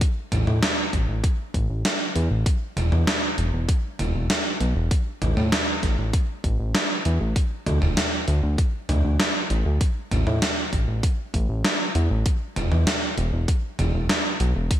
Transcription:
0.01 kick, closed hi-hat
0.32 analog synth bass A1, closed hi-hat, mid tom
0.47 analog synth bass A2, mid tom
0.63 snare, closed hi-hat
0.93 analog synth bass A1, kick, closed hi-hat
1.08 analog synth bass A1
1.24 kick, closed hi-hat
1.54 analog synth bass A1, kick, closed hi-hat
1.70 analog synth bass A1
1.85 snare, closed hi-hat
2.15 analog synth bass E2, closed hi-hat
2.31 analog synth bass A1
2.46 kick, closed hi-hat
2.77 analog synth bass E1, closed hi-hat, mid tom
2.92 analog synth bass E2, mid tom
3.07 snare, closed hi-hat
3.38 analog synth bass E1, closed hi-hat
3.53 analog synth bass E1
3.69 kick, closed hi-hat
3.99 analog synth bass E1, closed hi-hat, mid tom
4.14 analog synth bass E1
4.30 snare, closed hi-hat
4.60 analog synth bass B1, closed hi-hat
4.76 analog synth bass E1
4.91 kick, closed hi-hat
5.22 analog synth bass A1, closed hi-hat, mid tom
5.37 analog synth bass A2, mid tom
5.52 snare, closed hi-hat
5.83 analog synth bass A1, kick, snare, closed hi-hat
5.98 analog synth bass A1
6.13 kick, closed hi-hat
6.44 analog synth bass A1, kick, closed hi-hat
6.60 analog synth bass A1
6.75 snare, closed hi-hat
7.05 analog synth bass E2, closed hi-hat
7.21 analog synth bass A1
7.36 kick, closed hi-hat
7.66 analog synth bass D2, closed hi-hat, mid tom
7.82 analog synth bass D1, mid tom
7.97 snare, closed hi-hat
8.28 analog synth bass D2, closed hi-hat
8.43 analog synth bass D2
8.58 kick, closed hi-hat
8.89 analog synth bass D2, closed hi-hat, mid tom
9.04 analog synth bass D2
9.20 snare, closed hi-hat
9.50 analog synth bass A1, closed hi-hat
9.66 analog synth bass D2
9.81 kick, closed hi-hat
10.11 analog synth bass A1, closed hi-hat, mid tom
10.27 analog synth bass A2, mid tom
10.42 snare, closed hi-hat
10.73 analog synth bass A1, kick, closed hi-hat
10.88 analog synth bass A1
11.03 kick, closed hi-hat
11.34 analog synth bass A1, kick, closed hi-hat
11.49 analog synth bass A1
11.65 snare, closed hi-hat
11.95 analog synth bass E2, closed hi-hat
12.10 analog synth bass A1
12.26 kick, closed hi-hat
12.56 analog synth bass E1, closed hi-hat, mid tom
12.72 analog synth bass E2, mid tom
12.87 snare, closed hi-hat
13.18 analog synth bass E1, closed hi-hat
13.33 analog synth bass E1
13.48 kick, closed hi-hat
13.79 analog synth bass E1, closed hi-hat, mid tom
13.94 analog synth bass E1
14.09 snare, closed hi-hat
14.40 analog synth bass B1, closed hi-hat
14.55 analog synth bass E1
14.71 kick, closed hi-hat

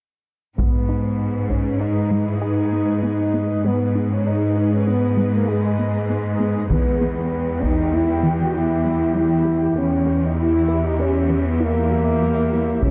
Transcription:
0.58 cello section G#2, synth pluck G#3, ambient pad G#3 D#4 G#4 B4, french horn section B3, taiko
0.89 synth pluck D#4
1.49 french horn section C#4, synth pluck D#4, taiko
1.80 french horn section D#4, synth pluck D#4
2.11 synth pluck G#3
2.26 french horn section E4
2.40 french horn section D#4, synth pluck G#4
2.73 synth pluck B3
3.02 synth pluck B3, french horn section D#4
3.34 synth pluck B3
3.65 cello section G#2, synth pluck G#3, ambient pad G#3 D#4 G#4 B4, french horn section B3
3.95 synth pluck D#4
4.11 french horn section C#4
4.26 french horn section D#4
4.56 synth pluck D#4
4.73 french horn section C#4
4.87 french horn section B3, synth pluck D#4
5.17 synth pluck G#3
5.34 french horn section A#3
5.48 french horn section G#3, synth pluck G#4
5.79 synth pluck B3
6.09 synth pluck B3
6.40 synth pluck B3
6.69 cello section E2, ambient pad E3 B3 G4 G5, synth pluck E3, french horn section B3, taiko
7.01 synth pluck B3
7.61 synth pluck B3, french horn section D#4, taiko
7.93 synth pluck B3, french horn section E4
8.23 synth pluck E3
8.42 french horn section F#4
8.54 synth pluck E4, french horn section E4
8.84 synth pluck G3
9.15 synth pluck G3, french horn section E4
9.45 synth pluck G3
9.76 cello section E2, ambient pad E3 E4 G4 E5, synth pluck E3, french horn section C#4
10.06 synth pluck B3
10.26 french horn section D#4
10.39 french horn section E4
10.68 synth pluck B3
10.85 french horn section D#4
11.00 synth pluck B3, french horn section C#4
11.30 synth pluck E3
11.48 french horn section B3
11.60 french horn section A#3, synth pluck E4
11.92 synth pluck G3
12.22 synth pluck G3
12.53 synth pluck G3
12.82 cello section C#2, synth pluck C#3, ambient pad E3 C#4 G#4 C#5, french horn section C#4, taiko

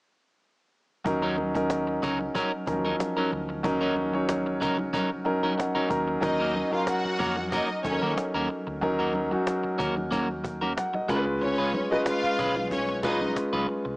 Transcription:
1.04 fingered electric bass D#2, grand piano F#3 C#4 D#4 A#4, muted clean electric guitar stroke, cajon bass, low conga
1.22 clean electric guitar F#3 C#4 D#4 A#4
1.37 muted clean electric guitar stroke, cajon slap, muted conga, high conga
1.54 grand piano F#3 C#4 D#4 A#4, muted clean electric guitar stroke, cajon bass, cajon slap
1.70 cajon slap, muted conga
1.87 muted clean electric guitar stroke, cajon slap
2.02 fingered electric bass C#2, clean electric guitar F#3 C#4 D#4 A#4, cajon bass, low conga
2.20 muted clean electric guitar stroke, high conga
2.35 clean electric guitar F#3 C#4 D#4 A#4, cajon bass, high conga
2.66 fingered electric bass D#2, grand piano F3 C#4 D#4 A#4, muted clean electric guitar stroke, cajon bass, muted conga
2.73 grand piano F#3
2.85 clean electric guitar F#3 C#4 D#4 A#4, high conga
3.00 muted clean electric guitar stroke, cajon slap
3.17 clean electric guitar F#3 C#4 D#4 A#4, high conga
3.32 fingered electric bass D2, muted clean electric guitar stroke, cajon slap, muted conga
3.49 muted clean electric guitar stroke
3.63 fingered electric bass D#2, grand piano F#3 C#4 D#4 A#4, muted clean electric guitar stroke, cajon bass, muted conga, low conga
3.81 clean electric guitar F#3 C#4 D#4 A#4
3.96 muted clean electric guitar stroke, cajon slap, muted conga, high conga
4.13 grand piano F#3 C#4 D#4 C#5, muted clean electric guitar stroke, cajon slap
4.29 cajon slap, muted conga
4.46 muted clean electric guitar stroke, cajon slap
4.61 fingered electric bass C#2, clean electric guitar F#3 C#4 D#4 A#4, cajon bass, muted conga, low conga
4.78 muted clean electric guitar stroke, high conga
4.93 clean electric guitar F#3 C#4 D#4 A#4, cajon bass, muted conga, high conga
5.24 grand piano F#3 C#4 D#4 A#4 D#5, muted clean electric guitar stroke, cajon slap, muted conga
5.43 clean electric guitar F#3 C#4 D#4 A#4, cajon slap, high conga
5.58 grand piano F#5, muted clean electric guitar stroke, cajon slap
5.75 clean electric guitar F#3 C#4 D#4 A#4, muted fingered electric bass stroke, high conga
5.89 fingered electric bass D#2, grand piano F#3 C#4 D#4 A#4 A#5, muted clean electric guitar stroke, cajon bass, muted conga
6.08 muted clean electric guitar stroke
6.21 fingered electric bass D#2, grand piano F#3 C#4 D#4 A#4, string section D#4 D#5, muted clean electric guitar stroke, cajon bass, muted conga, low conga
6.40 clean electric guitar A#3 C#4 F#4 A#4
6.55 muted clean electric guitar stroke, cajon slap, muted conga, high conga
6.71 grand piano F#3 C#4 D#4 A#4, string section F4 F5, muted clean electric guitar stroke, muted fingered electric bass stroke, cajon slap
6.87 string section F#4 F#5, cajon slap, muted conga
7.05 muted clean electric guitar stroke, muted fingered electric bass stroke
7.19 fingered electric bass F2, clean electric guitar A#3 C#4 F#4 A#4, cajon bass, muted conga, low conga
7.37 muted clean electric guitar stroke, high conga
7.52 clean electric guitar A#3 C#4 F#4 A#4, string section D#4 D#5, cajon bass, muted conga, high conga
7.84 fingered electric bass D#2, grand piano F#3 C#4 D#4 A4, string section C#4 C#5, muted clean electric guitar stroke, cajon bass
7.92 grand piano A#4
8.02 fingered electric bass D#3, clean electric guitar A#3 C#4 F#4 A#4, cajon slap, high conga
8.17 muted clean electric guitar stroke, muted fingered electric bass stroke, cajon slap, muted conga
8.34 fingered electric bass D#2, clean electric guitar A#3 C#4 F#4 A#4, high conga
8.50 muted clean electric guitar stroke, cajon slap
8.67 fingered electric bass D2, muted clean electric guitar stroke
8.81 fingered electric bass D#2, grand piano F#3 C#4 D#4 A#4, muted clean electric guitar stroke, cajon slap, low conga
8.99 clean electric guitar A#3 C#4 F#4 A#4
9.14 muted clean electric guitar stroke, cajon slap, high conga
9.31 grand piano F#3 C#4 D#4 F#4, muted clean electric guitar stroke, cajon slap
9.46 cajon slap, muted conga
9.64 muted clean electric guitar stroke, muted fingered electric bass stroke
9.78 fingered electric bass D#2, clean electric guitar A#3 C#4 F#4 A#4, cajon bass, muted conga, low conga
9.96 muted clean electric guitar stroke, high conga
10.11 clean electric guitar A#3 C#4 F#4 A#4, cajon bass, muted conga, high conga
10.44 muted clean electric guitar stroke, cajon bass
10.61 clean electric guitar A#3 C#4 F#4 A#4, cajon slap, high conga
10.77 grand piano F#5, cajon slap
10.94 grand piano D#5, muted clean electric guitar stroke, high conga
11.08 fingered electric bass C#2, grand piano G#3 C#4 F4 A#4, clean electric guitar G#3 C#4 F4 B4, cajon bass
11.16 grand piano B4
11.26 muted clean electric guitar stroke
11.42 string section C#4 C#5, muted clean electric guitar stroke, cajon slap, muted conga, low conga
11.58 clean electric guitar G#3 C#4 F4 B4
11.74 muted conga, high conga
11.91 grand piano G#3 C#4 F4 B4, string section D#4 D#5, muted fingered electric bass stroke, muted clean electric guitar stroke, cajon slap
12.06 string section F4 F5, cajon slap, muted conga
12.24 muted fingered electric bass stroke, muted clean electric guitar stroke
12.39 fingered electric bass B1, clean electric guitar G#3 C#4 F4 B4, cajon bass, muted conga, low conga
12.56 muted clean electric guitar stroke, high conga
12.71 string section C#4 C#5, cajon bass, high conga
12.89 muted clean electric guitar stroke
13.03 grand piano G#3 C#4 F4 B4, clean electric guitar G#3 C#4 F4 B4, string section D#4 D#5, cajon bass, muted conga
13.21 muted clean electric guitar stroke, high conga
13.36 muted fingered electric bass stroke, muted clean electric guitar stroke, cajon slap, muted conga
13.53 fingered electric bass C#2, clean electric guitar G#3 C#4 F4 B4, high conga
13.68 muted clean electric guitar stroke, cajon slap
13.85 fingered electric bass C2, muted clean electric guitar stroke

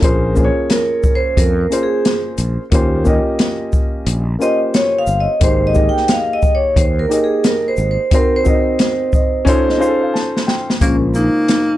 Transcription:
0.01 fretless electric bass A#1, upright piano A#3 C#4 F4 G#4 C5, kick, closed hi-hat
0.34 upright piano A#3 C#4 F4 G#4 C5, kick, shaker
0.45 upright piano C#5
0.70 vibraphone A#4, snare, closed hi-hat
1.03 kick, shaker
1.15 vibraphone C5
1.37 fretless electric bass F2, vibraphone A#4, kick, closed hi-hat
1.69 upright piano A#3 C#4 F4 G#4 C5, closed hi-hat, shaker
1.83 vibraphone G#4
2.05 snare, closed hi-hat
2.38 fretless electric bass A#1, closed hi-hat, shaker
2.71 fretless electric bass D#2, upright piano A#3 C#4 F4 G4 C5, kick, closed hi-hat
3.04 upright piano A#3 C#4 F4 G4 D#5, kick, shaker
3.39 snare, closed hi-hat
3.73 kick, shaker
4.07 fretless electric bass A#1, closed hi-hat
4.39 upright piano A#3 C#4 F4 G4 C5, vibraphone D#5, shaker
4.74 vibraphone C#5, snare, closed hi-hat
4.99 vibraphone F5
5.07 fretless electric bass G1, shaker
5.20 vibraphone D#5
5.40 fretless electric bass G#1, upright piano A#3 D#4 G4 G#4 C5, kick, closed hi-hat
5.44 vibraphone C5
5.67 vibraphone D#5
5.73 upright piano A#3 D#4 G4 G#4 D#5, kick, shaker
5.89 vibraphone G5
5.97 snare
6.08 vibraphone F5, snare, closed hi-hat
6.33 vibraphone D#5
6.42 kick, shaker
6.55 vibraphone C#5
6.76 fretless electric bass D#2, vibraphone C5, kick, closed hi-hat
6.99 vibraphone A#4
7.08 upright piano A#3 D#4 G4 G#4 D#5, closed hi-hat, shaker
7.24 vibraphone G#4
7.44 vibraphone A#4, snare, closed hi-hat
7.68 vibraphone C5
7.77 fretless electric bass G#1, shaker
7.91 vibraphone C5
8.11 upright piano C4 D#4 F#4 A#4 C5, kick, closed hi-hat
8.15 vibraphone A#4
8.36 vibraphone C5
8.44 upright piano C4 D#4 F#4 A#4 D#5, kick, shaker
8.79 snare, closed hi-hat
9.13 upright piano D#5, kick, shaker
9.45 upright piano C#4 D#4 F4 A4 C5 C#5, kick, closed hi-hat
9.68 upright piano D#5, snare
9.78 upright piano C#4 D#4 F4 G#4 C5 F5
9.82 shaker
9.86 upright piano A4
10.02 upright piano F5
10.13 upright piano A5, snare
10.37 snare
10.47 upright piano G5, snare
10.70 snare
10.80 fretless electric bass A#1, upright piano C#3 G#3 A#3 F4 C5, tenor saxophone A#3, vibraphone C#4, kick, closed hi-hat
11.14 tenor saxophone A#3, vibraphone D#4, shaker
11.48 snare, closed hi-hat

